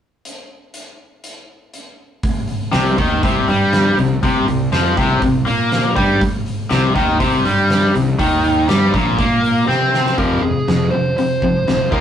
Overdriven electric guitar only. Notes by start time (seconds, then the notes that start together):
2.73 C3
2.98 D#3
3.24 C3
3.49 G3
3.99 C3
4.24 C3
4.48 C3
4.73 F3
4.98 C3
5.23 C3
5.47 A#3
5.96 G3
6.70 C3
6.95 D#3
7.20 C3
7.45 G3
7.94 C3
8.19 D#3
8.69 G3
8.92 A#2
9.18 A#3
9.68 C4
10.18 F2 C3 F3
10.43 F2 C3
10.68 F2 C3
10.94 F2 C3
11.19 F2 C3
11.43 F2 C3
11.68 F2 C3
11.92 D#3 F3 A#3